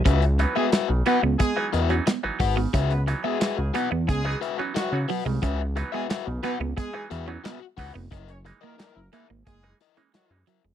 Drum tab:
HH |xxx-x-x-x-xxx-o-|xxx-x-x-x-x-x-o-|x-x-x-x-x-x-x-o-|xxx-x-x-x-xxx-x-|
CP |----x-------x---|----x-------x---|----x-------x---|----x-------x---|
SD |----o-------o---|----o-------o---|----o-------o---|----o-------o---|
BD |o-------o-----o-|o-------o-------|o-------o-----o-|o-------o-------|